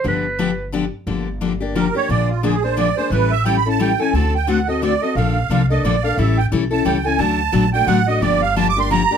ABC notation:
X:1
M:3/4
L:1/16
Q:"Swing" 1/4=176
K:Gphr
V:1 name="Accordion"
z12 | [K:Gm] z8 B2 ^c2 | d2 F2 _A2 c2 d2 c2 | =B2 =e2 (3g2 =b2 a2 g2 _a2 |
a2 g2 ^f2 e2 d2 e2 | f6 e2 d2 f2 | =e2 g2 z2 a2 g2 _a2 | a6 g2 ^f2 e2 |
d2 f2 (3a2 d'2 c'2 b4 |]
V:2 name="Clarinet"
=B8 z4 | [K:Gm] z12 | z12 | z12 |
z12 | z12 | z12 | z12 |
z12 |]
V:3 name="Steel-string acoustic guitar"
[D,F,=B,DG]2 z2 [D,F,B,DG] z3 [D,F,B,DG] z3 | [K:Gm] [D,F,B,DG]2 z2 [D,F,B,DG] z [B,DG]2 [D,F,B,DG] z [B,DG]2 | [D,F,B,D_A]2 z2 [D,F,B,DA] z [B,DA]2 [D,F,B,DA] z [B,DA]2 | [=E,G,^C=EA]2 z2 [E,G,CEA] z [CEA]2 [E,G,CEA] z [CEA]2 |
[D,A,C^FA]2 z2 [D,A,CFA] z [CFA]2 [D,A,CFA] z [CFA]2 | [D,F,B,DA]2 z2 [D,F,B,DA] z [B,DA]2 [D,F,B,DA] z [B,DA]2 | [=E,G,^C=EA]2 z2 [E,G,CEA] z [CEA]2 [E,G,CEA] z [CEA]2 | [D,^F,A,D^F]2 z2 [D,F,A,DF] z [A,DF]2 [D,F,A,DF] z [A,DF]2 |
[D,F,B,DG]2 z2 [D,F,B,DG] z [B,DG]2 [D,F,B,DG] z [B,DG]2 |]
V:4 name="Upright bass" clef=bass
G,,,12 | [K:Gm] G,,,12 | B,,,12 | A,,,12 |
D,,12 | B,,,4 C,,4 B,,,4 | A,,,4 =B,,,4 ^C,,4 | D,,4 B,,,4 A,,,4 |
G,,,12 |]